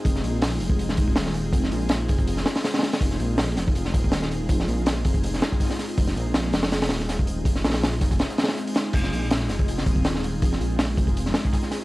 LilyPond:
<<
  \new Staff \with { instrumentName = "Detuned saw bass" } { \clef bass \time 4/4 \key f \minor \tempo 4 = 162 f,,8 bes,,4 f,,4 ees,,4. | f,,8 bes,,4 f,,4 r4. | f,,8 bes,,4 f,,4 r4. | f,,8 bes,,4 f,,4 r4. |
f,,8 bes,,4 f,,4 ees,,4. | f,,8 bes,,4 f,,8 r2 | f,,8 bes,,4 f,,4 ees,,4. | f,,8 bes,,4 f,,4 r4. | }
  \new DrumStaff \with { instrumentName = "Drums" } \drummode { \time 4/4 <hh hho bd>16 <hh sn>16 <hh hho>8 <hh hho sn>16 sn16 <hh hho>16 bd16 <hh hho>16 sn16 <hh hho bd>16 bd16 <hh hho sn>16 sn16 <hh hho>8 | <hh hho bd>16 sn16 <hh hho>16 hh16 <hh hho sn>8 <hh hho bd sn>16 <hh bd>16 <hh hho>16 sn16 <hh hho sn>16 <hho sn>16 <hh hho sn>16 <hho sn>32 <hho sn>32 <hh hho sn>16 <hh hho sn>16 | <hh hho bd>16 <hh sn>16 <hh hho>8 <hh hho sn>16 sn16 <hh hho sn>16 bd16 <hh hho>16 sn16 <hh hho bd>16 bd16 <hh hho sn>16 sn16 <hh hho>8 | <hh hho bd>16 sn16 <hh hho>16 hh16 <hh hho sn>8 <hh hho bd>16 <hh bd>16 <hh hho>16 sn16 <hh hho sn>16 bd16 <hh hho bd sn>32 <hh sn>32 <hh sn>32 <hh sn>32 <hh hho sn>16 hh16 |
<hh hho bd>16 <hh sn>16 <hh hho>8 <hh hho sn>16 sn16 <hh hho sn>16 <hho sn>16 <hh hho sn>16 <hho sn>16 <hh hho sn>16 sn16 <hh hho sn>16 bd16 <hh hho>8 | <hh hho bd>16 sn16 <hh hho sn>32 <hho sn>32 <hh hho sn>16 <hh hho sn>8 <hh hho bd sn>16 <hh bd sn>16 <hh hho sn>16 <hh sn>16 <hh hho sn>32 <hho sn>32 <hho sn>16 hh16 <hh hho>16 <hh hho sn>8 | <cymc hh hho bd>16 <hh sn>16 <hh hho>8 <hh hho sn>16 sn16 <hh hho sn>16 bd16 <hh hho>16 sn16 <hh hho bd>16 bd16 <hh hho sn>16 sn16 <hh hho>8 | <hh hho bd>16 sn16 <hh hho>16 hh16 <hh hho sn>8 <hh hho bd>16 <hh bd>16 <hh hho>16 sn16 <hh hho sn>16 bd16 <hh hho bd sn>16 sn16 <hh hho sn>16 hh16 | }
>>